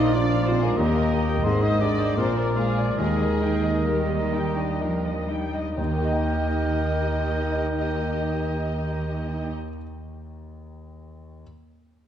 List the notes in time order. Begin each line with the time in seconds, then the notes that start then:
Already playing: A#1 A#2 F3 D4 D#4 F4 D5 D#5 F5 D#6
0.00 D#4 A#4
0.12 D4 F4 D5 D6
0.30 D5 F5
0.44 C4 C5 D5 C6
0.48 F4
0.58 G#4 G#5
0.63 G#3 G#4 A#4 F5
0.74 D#2 A#3 A#4 D#5 A#5
0.78 D#2 D#3 G4 A#4 D#5
0.96 A#4 D#5
1.12 G4 D#5
1.28 D#5 G5
1.43 G#1 G#2 C4 G#4 C5 C6
1.47 C5
1.61 D#4 C5 D#5 D#6
1.65 D#5
1.80 D4 G#4 D5 D#5 D6
1.99 C5 D#5
2.16 A#1 A#2 F3 C4 A#4 C5 D5 C6
2.21 C5
2.36 A#3 A#4 D5 A#5
2.56 G#3 F4 G#4 F5 G#5
2.77 D5
2.95 D#2 D#3 G#3 G#4 A#4 D#5
3.00 D#2 D#3 G#4 G#5
3.19 A#4 D#5
3.41 D#4 G5
3.63 D#5
3.85 D#3 G3 A#3 G4 A#4 G5
4.08 A#4 D#5
4.33 D#4 G5
4.57 D4 D#5
4.79 F3 D#4 A#4
5.04 A#4 D#5
5.27 G3 D#4
5.31 G5
5.54 D#5
5.76 D#2 D#3 D#4 G4 A#4 D#5 G5
5.81 D#3 D#5
5.91 A#3
5.98 G4
6.04 D#5
6.12 G5